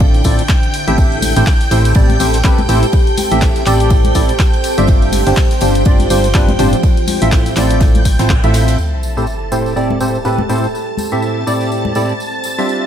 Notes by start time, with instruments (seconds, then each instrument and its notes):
Already playing: fm bass A1, synth stab A2 C4 E4 F4 A4 D5, ambient pad D4 E5 A5, string machine G5 G6
0.00 kick, ride
0.14 closed hi-hat
0.24 fm bass A1, synth stab A2 C4 E4 F4 A4 D5, kick, open hi-hat, ride
0.39 closed hi-hat
0.49 kick, snare, clap, ride
0.63 closed hi-hat, ride
0.74 open hi-hat, ride
0.88 fm bass A1, synth stab A2 C4 E4 G4 A4 E5, closed hi-hat
0.98 ambient pad G4, kick, ride, tambourine
1.12 ambient pad C5, closed hi-hat
1.22 open hi-hat, tambourine, high conga
1.36 fm bass A1, synth stab A2 C4 E4 G4 A4 C5, closed hi-hat, ride, tambourine
1.47 kick, snare, clap, ride, tambourine
1.61 snare, closed hi-hat
1.71 fm bass A1, synth stab A2 C4 E4 G4 A4 C5, open hi-hat, ride, tambourine
1.85 closed hi-hat, tambourine
1.95 fm bass A1, synth stab A2 C4 E4 G4 A4 D5, kick, ride, tambourine
2.09 closed hi-hat, high conga
2.20 fm bass A1, synth stab A2 C4 E4 G4 A4 C5, open hi-hat, ride, tambourine
2.33 snare, closed hi-hat, tambourine
2.44 fm bass A1, synth stab A2 C4 E4 G4 A4 B4, kick, snare, clap, ride, tambourine
2.58 closed hi-hat, high conga
2.69 fm bass A1, synth stab A2 C4 E4 G4 A4 C5, open hi-hat, ride, tambourine
2.83 closed hi-hat, tambourine
2.93 kick, ride, tambourine
3.07 closed hi-hat
3.18 open hi-hat, ride, tambourine, high conga
3.32 fm bass A1, synth stab A2 C4 E4 G4 A4 E5, closed hi-hat, tambourine
3.42 kick, snare, clap, ride, tambourine
3.56 snare, closed hi-hat
3.66 fm bass A1, synth stab A2 C4 E4 G4 A4 D5, clap, open hi-hat, ride, tambourine
3.80 closed hi-hat, tambourine
3.90 kick, ride, tambourine
4.05 closed hi-hat, high conga
4.15 fm bass A1, synth stab A2 C4 E4 G4 A4 D5, kick, open hi-hat, ride, tambourine
4.29 closed hi-hat, tambourine
4.39 kick, snare, clap, ride, tambourine
4.54 closed hi-hat, ride
4.64 open hi-hat, ride, tambourine
4.78 fm bass G1, synth stab G3 C4 D4 F4 G4 E5, closed hi-hat, tambourine
4.87 ambient pad F3, kick, ride, tambourine
5.02 closed hi-hat
5.12 open hi-hat, tambourine, high conga
5.27 fm bass G1, synth stab G3 C4 D4 F4 G4 C5, closed hi-hat, ride, tambourine
5.37 kick, snare, clap, ride, tambourine
5.51 snare, closed hi-hat
5.61 fm bass G1, synth stab G3 C4 D4 F4 G4 C5, open hi-hat, ride, tambourine
5.75 ambient pad G5, closed hi-hat, tambourine
5.85 fm bass G1, synth stab G3 C4 D4 F4 G4 D5, kick, ride, tambourine
5.99 closed hi-hat, high conga
6.10 fm bass G1, synth stab G3 C4 D4 F4 G4 C5, open hi-hat, ride, tambourine
6.24 snare, closed hi-hat, tambourine
6.34 fm bass G1, synth stab G3 C4 D4 F4 G4 B4, kick, snare, clap, ride, tambourine
6.48 closed hi-hat, high conga
6.59 fm bass G1, synth stab A2 C4 D4 F4 G4 C5, open hi-hat, ride, tambourine
6.73 closed hi-hat, tambourine
6.83 kick, ride, tambourine
6.97 closed hi-hat
7.07 open hi-hat, ride, tambourine, high conga
7.22 fm bass A1, synth stab A2 C4 E4 F4 A4 E5, closed hi-hat, tambourine
7.32 kick, snare, clap, ride, tambourine
7.38 ambient pad E5
7.46 snare, closed hi-hat, tambourine
7.56 fm bass A1, synth stab A2 C4 E4 F4 A4 D5, clap, open hi-hat, ride, tambourine
7.71 ambient pad A5, closed hi-hat, tambourine
7.80 kick, snare, ride, tambourine
7.95 closed hi-hat, high conga
8.05 kick, open hi-hat, ride, tambourine
8.19 fm bass A1, synth stab A2 C4 E4 F4 A4 C5, snare, closed hi-hat, ride, tambourine
8.30 kick, clap, tambourine
8.43 fm bass A1, synth stab A2 C4 E4 F4 A4 E5, closed hi-hat, ride, tambourine
8.54 snare, open hi-hat, ride, tambourine
8.68 snare, closed hi-hat, ride, tambourine
8.78 ambient pad G4, string machine A5 A6, tambourine, sub drop
9.03 tambourine
9.17 synth stab A2 C4 E4 G4 A4 C5, tambourine
9.27 tambourine
9.42 ambient pad C5
9.52 synth stab A2 C4 E4 G4 A4 C5, tambourine
9.66 tambourine
9.76 synth stab A2 C4 E4 G4 A4 D5, tambourine
9.90 high conga
10.00 synth stab A2 C4 E4 G4 A4 C5, tambourine
10.15 tambourine
10.25 synth stab A2 C4 E4 G4 A4 B4, tambourine
10.38 high conga
10.49 synth stab A2 C4 E4 G4 A4 C5, tambourine
10.64 tambourine
10.75 tambourine
10.97 tambourine, high conga
11.12 synth stab A2 C4 E4 G4 A4 E5, tambourine
11.22 tambourine
11.47 synth stab A2 C4 E4 G4 A4 D5, tambourine
11.61 tambourine
11.72 tambourine
11.85 high conga
11.95 synth stab A2 C4 E4 G4 A4 D5, tambourine
12.09 tambourine
12.20 tambourine
12.44 tambourine
12.58 synth stab G3 C4 D4 F4 G4 E5, tambourine
12.69 tambourine